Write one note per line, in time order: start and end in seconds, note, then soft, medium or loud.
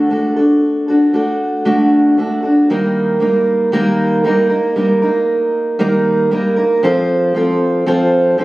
0.00 0.11 D3 medium
0.00 0.11 F#4 medium
0.00 0.11 A4 medium
0.10 0.37 A3 soft
0.10 0.37 D4 soft
0.10 0.36 F#4 medium
0.10 0.35 A4 medium
0.36 0.89 D4 soft
0.36 0.88 F#4 soft
0.36 0.87 A4 soft
0.88 1.13 D4 soft
0.88 1.14 F#4 soft
0.88 1.14 A4 soft
1.13 1.64 A3 soft
1.13 1.65 D4 medium
1.13 1.65 F#4 medium
1.13 1.66 A4 medium
1.65 2.18 D3 medium
1.65 2.16 A3 medium
1.65 2.17 D4 medium
1.65 2.18 F#4 medium
1.65 2.19 A4 medium
2.18 2.44 A3 soft
2.18 2.44 D4 medium
2.18 2.43 F#4 medium
2.18 2.41 A4 medium
2.42 2.70 D4 soft
2.42 2.70 F#4 soft
2.42 2.69 A4 soft
2.70 3.22 D#3 medium
2.70 3.19 G3 medium
2.70 3.20 A#3 medium
2.70 3.21 D#4 medium
2.70 3.22 A#4 medium
3.20 3.72 G3 medium
3.20 3.72 A#3 medium
3.20 3.73 D#4 medium
3.20 3.73 A#4 medium
3.72 4.25 D#3 medium
3.72 4.23 G3 medium
3.72 4.24 A#3 medium
3.72 4.24 D#4 medium
3.72 4.26 A#4 medium
4.24 4.51 G3 medium
4.24 4.51 A#3 medium
4.24 4.50 D#4 medium
4.24 4.48 A#4 medium
4.50 4.75 A#3 soft
4.50 4.76 D#4 soft
4.50 4.76 A#4 medium
4.76 5.02 G3 medium
4.76 5.03 A#3 medium
4.76 5.02 D#4 medium
4.76 5.01 A#4 medium
5.02 5.79 A#3 soft
5.02 5.79 D#4 soft
5.02 5.80 A#4 medium
5.79 6.32 D#3 medium
5.79 6.30 G3 medium
5.79 6.31 A#3 medium
5.79 6.31 D#4 medium
5.79 6.32 A#4 medium
6.31 6.58 G3 medium
6.31 6.58 A#3 medium
6.31 6.56 D#4 medium
6.31 6.55 A#4 medium
6.56 6.83 A#3 soft
6.56 6.83 D#4 soft
6.56 6.83 A#4 medium
6.83 7.33 F3 medium
6.83 7.35 C4 medium
6.83 7.35 F4 medium
6.83 7.36 A4 medium
7.35 7.85 F3 medium
7.35 7.86 C4 medium
7.35 7.87 F4 medium
7.35 7.87 A4 medium
7.86 8.37 F3 medium
7.86 8.38 C4 medium
7.86 8.38 F4 medium
7.86 8.39 A4 medium
8.38 8.45 F3 medium
8.38 8.45 C4 medium
8.38 8.45 F4 medium
8.38 8.45 A4 medium